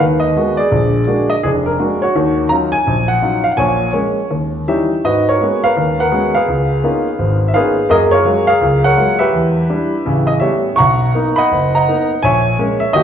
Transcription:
0.00 0.32 D#2 medium
0.00 0.32 D#3 medium
0.00 0.69 B4 medium
0.20 0.59 D#5 medium
0.37 0.61 G#3 soft
0.37 0.61 A#3 soft
0.37 0.61 B3 soft
0.37 0.61 F#4 medium
0.57 1.28 G#4 medium
0.57 1.33 D5 medium
0.72 1.03 A#1 medium
0.72 1.03 D3 medium
1.07 1.32 G#3 soft
1.07 1.32 A#3 soft
1.07 1.33 D4 soft
1.07 1.33 F#4 medium
1.30 1.35 D#5 medium
1.43 1.75 F1 medium
1.43 1.78 D4 medium
1.43 1.49 G#4 medium
1.66 2.00 A#4 medium
1.79 2.04 G#3 soft
1.79 2.04 A#3 soft
1.79 2.04 D4 soft
1.79 2.02 F#4 medium
2.02 2.70 F#4 medium
2.02 2.36 C#5 medium
2.16 2.47 D#2 medium
2.16 2.47 D#3 medium
2.49 2.75 F#3 soft
2.49 2.75 C#4 soft
2.49 2.76 D#4 soft
2.49 2.76 F4 medium
2.49 2.55 A#5 medium
2.72 3.10 G#5 medium
2.87 3.18 A#1 medium
3.08 3.46 F#5 medium
3.22 3.46 F#3 soft
3.22 3.46 C#4 soft
3.22 3.47 D#4 soft
3.22 3.47 F4 medium
3.44 3.52 F5 medium
3.51 3.57 F#5 medium
3.57 3.89 A#1 medium
3.57 3.89 A#2 medium
3.57 3.91 C#5 medium
3.57 3.91 G#5 medium
3.93 4.18 G#3 soft
3.93 4.19 A#3 soft
3.93 4.19 C#4 soft
3.93 4.27 C#5 medium
4.31 4.63 D#2 medium
4.67 4.93 E3 soft
4.67 4.93 G3 soft
4.67 4.93 C#4 soft
4.67 4.93 D#4 medium
4.67 5.03 G4 soft
4.67 5.03 C#5 soft
4.67 5.06 E5 medium
5.04 5.36 G#2 medium
5.04 5.28 F#4 medium
5.04 5.63 B4 medium
5.04 5.27 D#5 medium
5.29 5.40 F#4 medium
5.29 5.63 A#4 medium
5.29 5.66 C#5 medium
5.41 5.66 G#3 soft
5.41 5.66 A#3 soft
5.41 5.66 B3 soft
5.41 5.66 C#4 soft
5.41 5.66 F#4 soft
5.64 5.99 A#4 medium
5.64 5.99 B4 medium
5.64 6.01 F5 medium
5.77 6.08 D#2 medium
6.00 6.46 A#4 medium
6.00 6.34 B4 medium
6.00 6.33 F#5 medium
6.12 6.37 G#3 medium
6.12 6.37 A#3 soft
6.12 6.37 B3 soft
6.12 6.37 C#4 soft
6.12 6.37 F#4 medium
6.35 7.38 G#4 medium
6.35 7.38 B4 medium
6.35 7.37 F5 medium
6.48 6.79 C#2 medium
6.84 7.08 A#3 medium
6.84 7.08 B3 soft
6.84 7.08 C#4 soft
6.84 7.08 D#4 soft
6.84 7.08 F4 medium
7.19 7.50 G#1 medium
7.48 7.54 E5 medium
7.54 7.78 A#3 medium
7.54 7.78 B3 soft
7.54 7.78 C#4 soft
7.54 7.79 D#4 medium
7.54 7.79 F4 medium
7.54 7.88 G#4 medium
7.54 7.88 B4 medium
7.54 7.87 F5 medium
7.89 8.21 F#2 medium
7.89 8.21 A#3 medium
7.89 8.48 G#4 medium
7.89 8.12 A#4 medium
7.89 7.96 D#5 medium
8.11 8.24 F4 medium
8.11 8.46 A#4 medium
8.11 8.49 C#5 medium
8.25 8.49 F#3 medium
8.25 8.50 G#3 soft
8.25 8.50 A#3 soft
8.25 8.50 F4 medium
8.47 9.17 G#4 medium
8.47 8.84 A#4 medium
8.47 8.81 F5 loud
8.61 8.92 C#2 medium
8.84 9.30 A#4 medium
8.84 9.30 C#5 medium
8.84 9.21 F#5 loud
8.97 9.21 F#3 soft
8.97 9.22 G#3 soft
8.97 9.22 A#3 soft
8.97 9.22 F4 medium
9.19 10.25 G4 medium
9.19 10.25 B4 medium
9.19 10.32 E5 medium
9.33 9.64 E2 medium
9.69 9.94 G3 medium
9.69 9.94 D4 soft
9.69 9.94 E4 medium
10.06 10.38 A1 medium
10.06 10.38 C#3 medium
10.27 10.32 D#5 medium
10.40 10.67 G3 soft
10.40 10.68 A3 soft
10.40 10.68 B3 soft
10.40 10.68 C#4 medium
10.40 10.76 G4 medium
10.40 10.76 C#5 medium
10.40 10.79 E5 medium
10.76 11.11 B1 medium
10.76 11.37 F#5 medium
10.76 11.48 A#5 medium
10.76 11.40 C#6 loud
11.15 11.40 A#3 medium
11.15 11.41 B3 soft
11.15 11.41 D#4 medium
11.36 11.75 D#5 medium
11.36 11.75 F#5 medium
11.36 11.72 B5 medium
11.51 11.83 F#1 medium
11.75 12.21 D#5 medium
11.75 12.21 F#5 medium
11.75 12.08 A#5 medium
11.88 12.13 A#3 soft
11.88 12.13 B3 soft
11.88 12.13 D#4 medium
12.22 12.54 A#1 medium
12.22 12.91 C#5 medium
12.22 12.78 E5 medium
12.22 12.56 G#5 medium
12.58 12.83 G#3 soft
12.58 12.83 A#3 soft
12.58 12.83 C#4 medium
12.80 12.93 E5 medium
12.93 13.03 D#2 medium
12.93 13.03 F#4 medium
12.93 13.03 G4 medium
12.93 13.03 D#5 medium

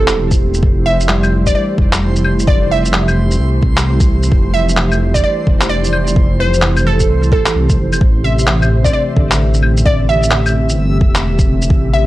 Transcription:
0.00 0.61 E1 loud
0.00 0.59 C3 medium
0.00 0.58 A3 medium
0.00 0.64 C4 medium
0.00 0.64 E4 medium
0.00 7.97 E4 medium
0.00 0.64 G4 medium
0.00 7.97 G4 medium
0.00 0.31 A4 medium
0.00 8.02 C5 medium
0.08 clap loud
0.08 shaker medium
0.31 kick loud
0.31 shaker soft
0.54 shaker medium
0.63 1.54 F1 medium
0.63 7.98 E3 medium
0.63 7.97 A3 medium
0.63 kick loud
0.86 1.10 E5 medium
1.00 shaker medium
1.09 1.69 G3 medium
1.09 clap medium
1.23 claves medium
1.23 shaker soft
1.46 1.52 D5 medium
1.46 kick medium
1.46 shaker soft
1.55 1.64 D5 medium
1.78 2.46 F1 medium
1.78 kick medium
1.93 clap loud
1.93 shaker medium
2.16 shaker soft
2.24 claves medium
2.39 shaker soft
2.47 3.38 F1 medium
2.47 2.69 D5 medium
2.47 kick loud
2.71 3.17 E5 medium
2.85 shaker medium
2.93 clap loud
3.08 claves medium
3.08 shaker soft
3.31 shaker medium
3.39 3.61 C2 medium
3.63 4.31 C2 loud
3.63 kick medium
3.77 clap loud
3.77 shaker medium
4.00 kick medium
4.00 shaker soft
4.23 shaker soft
4.32 5.23 F1 loud
4.32 kick loud
4.54 4.79 E5 medium
4.69 shaker medium
4.77 clap medium
4.92 claves medium
4.92 shaker soft
5.14 5.20 D5 medium
5.14 kick medium
5.14 shaker medium
5.24 5.33 D5 medium
5.47 6.15 F1 medium
5.47 kick medium
5.61 clap loud
5.61 shaker medium
5.69 6.36 D5 medium
5.84 shaker soft
5.93 claves medium
6.07 shaker medium
6.16 7.08 F1 medium
6.16 kick loud
6.40 6.64 C5 medium
6.54 shaker medium
6.62 7.23 E3 soft
6.62 clap medium
6.77 claves medium
6.77 shaker soft
6.87 7.11 A4 medium
7.00 kick medium
7.00 shaker medium
7.09 7.33 C2 medium
7.23 shaker soft
7.32 7.45 A1 medium
7.32 7.70 A4 medium
7.32 kick medium
7.46 clap loud
7.46 shaker medium
7.55 7.80 C2 loud
7.69 kick medium
7.69 shaker soft
7.78 8.00 F1 medium
7.93 claves medium
7.93 shaker medium
8.01 8.92 A1 medium
8.01 12.06 E3 medium
8.01 12.06 A3 medium
8.01 12.06 C4 medium
8.01 12.06 G4 medium
8.01 12.06 E5 medium
8.01 kick loud
8.24 8.84 C3 medium
8.24 8.49 E5 medium
8.39 shaker medium
8.47 clap loud
8.62 claves medium
8.62 shaker soft
8.84 8.90 D5 medium
8.84 kick medium
8.84 shaker medium
8.93 9.03 D5 medium
9.16 9.85 A1 medium
9.16 9.77 D3 medium
9.16 kick medium
9.31 clap loud
9.31 shaker medium
9.54 shaker soft
9.63 claves medium
9.77 shaker medium
9.85 10.77 A1 loud
9.85 10.07 D5 medium
9.85 kick loud
10.09 10.55 E5 medium
10.23 shaker medium
10.31 clap loud
10.46 claves medium
10.46 shaker soft
10.69 shaker medium
10.78 11.02 G1 medium
11.01 11.69 E1 loud
11.01 kick loud
11.15 clap loud
11.15 shaker medium
11.39 kick loud
11.39 shaker soft
11.47 12.06 C3 medium
11.62 shaker medium
11.70 12.06 A1 medium
11.70 kick loud
11.93 12.06 E5 medium

